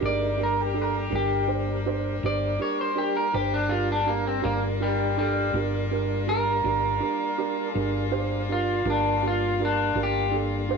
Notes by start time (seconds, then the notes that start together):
Already playing: A#3 G4 D5
0.01 G1 G#3 D4 D#4 G4 A#4
0.06 D5
0.37 D4 G4 A#4
0.42 G3 D4 A#4
0.61 G4
0.74 D4 G4 A4
0.82 A#4
0.97 G4
1.10 G1 D4 G4 A#4
1.15 G4
1.48 D4 G4 C5
1.86 D4 G4 C5
2.23 G1 D4 G4 C5 D5
2.59 D4 G4 A#4 C#5
2.81 C5
2.95 D4 G4 A#4
3.17 A#4
3.33 G1 D4 G4 C5
3.54 D4
3.69 D4 F4 G4 A#4
3.92 D4
4.06 A#3 D4 G4 A#4
4.27 C4
4.42 G1 G3 A#3 D4 F4 G4 A#4
4.80 G3 D4 G4 A#4
5.17 G3 D4 G4 A4
5.54 G1 D4 G4 A#4
5.91 D4 G4 A#4
6.27 D4 G4 A#4
6.64 G1 D4 G4 A#4
7.00 D4 G4 A#4
7.38 D4 G4 A#4
7.72 G1 D4 G4 G#4
7.76 A#4
8.11 D4 G4 C5
8.49 D4 F4 G4 A#4
8.85 G1 G3 A#3 D4 G4 A#4
8.90 D4
9.23 D4 G4 A#4
9.28 F4
9.60 D4 G4 A#4
9.65 D4
9.95 G1 D4 G4 A#4
10.03 G4
10.31 D4 G4 A4
10.69 D4 G4 C5